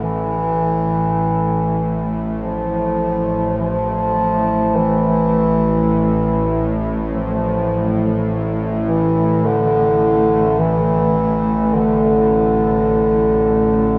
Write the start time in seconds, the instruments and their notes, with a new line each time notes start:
Already playing: synth drone A1 A2, singing bowl A4
0.03 bass clarinet E3
2.41 bass clarinet F3
3.58 bass clarinet F3
4.76 bass clarinet E3
7.10 bass clarinet F3
8.85 bass clarinet E3
9.45 bass clarinet D3
10.59 bass clarinet E3
11.73 bass clarinet D3